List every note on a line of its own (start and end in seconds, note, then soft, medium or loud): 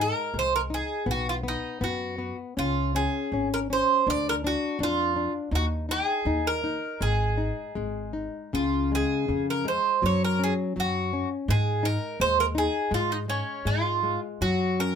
0.00 0.33 G#3 medium
0.00 0.33 D#4 soft
0.00 0.37 A#4 medium
0.34 0.81 C2 medium
0.34 0.70 G#3 medium
0.39 0.54 C5 medium
0.56 0.61 A#4 medium
0.70 1.06 D#4 soft
0.70 1.10 G#4 medium
1.06 1.55 B1 medium
1.06 1.42 B3 medium
1.11 1.28 F#4 medium
1.29 1.34 F4 medium
1.43 1.80 B3 soft
1.48 1.85 D#4 medium
1.81 2.30 F#2 medium
1.81 2.17 B3 soft
1.81 2.35 F#4 medium
2.18 2.56 B3 soft
2.57 3.06 C#2 medium
2.57 2.94 C#4 medium
2.57 2.95 F4 medium
2.95 3.31 C#4 soft
2.95 3.48 G#4 medium
3.32 3.80 G#1 medium
3.32 3.69 C#4 soft
3.54 3.59 A#4 medium
3.70 4.06 C#4 medium
3.70 4.10 C5 medium
4.07 4.54 D2 medium
4.07 4.43 D4 medium
4.07 4.28 D5 medium
4.29 4.34 A#4 medium
4.44 4.79 D4 soft
4.44 4.79 F#4 medium
4.79 5.26 F2 medium
4.79 5.15 D4 medium
4.83 5.32 F4 medium
5.16 5.51 D4 soft
5.51 5.99 D#2 medium
5.51 5.88 D#4 medium
5.51 5.65 F#4 medium
5.89 6.25 D#4 soft
5.89 6.47 G#4 medium
6.25 6.74 D#2 medium
6.25 6.62 D#4 medium
6.47 7.03 A#4 medium
6.64 7.00 D#4 soft
7.01 7.50 G#1 medium
7.01 7.74 G#3 medium
7.01 8.11 G#4 medium
7.38 7.74 D#4 soft
7.75 8.26 G#1 medium
7.75 8.50 G#3 medium
8.13 8.51 D#4 soft
8.53 9.03 C#2 medium
8.53 9.27 C#3 medium
8.53 8.90 F4 medium
8.92 9.28 G#3 soft
8.92 9.45 G#4 medium
9.28 9.77 F2 medium
9.28 9.64 C#3 medium
9.50 9.68 A#4 medium
9.65 10.01 G#3 medium
9.65 10.05 C5 medium
10.02 10.50 F#2 medium
10.02 10.75 F#3 medium
10.02 10.23 C#5 medium
10.24 10.41 A#4 medium
10.39 10.74 C#4 soft
10.44 10.53 G#4 medium
10.76 11.23 F#2 medium
10.76 11.11 F#3 medium
10.76 11.28 F#4 medium
11.13 11.47 C#4 medium
11.48 11.95 G#2 medium
11.48 12.19 G#3 medium
11.48 11.86 G#4 medium
11.83 12.18 D#4 medium
11.83 12.21 A#4 medium
12.20 12.67 D#2 medium
12.20 12.55 G#3 medium
12.20 12.37 C5 medium
12.40 12.45 A#4 medium
12.55 12.90 D#4 soft
12.55 12.94 G#4 medium
12.91 13.39 G#2 medium
12.91 13.27 G#3 medium
12.91 13.12 F4 medium
13.12 13.17 D#4 medium
13.28 13.64 G#3 soft
13.28 13.67 C#4 medium
13.65 14.15 G#2 medium
13.65 14.02 G#3 soft
13.65 14.19 F4 medium
14.03 14.40 G#3 soft
14.41 14.90 F#2 medium
14.41 14.95 F#3 medium
14.41 14.81 F#4 medium
14.80 14.95 C#4 soft
14.80 14.95 A#4 medium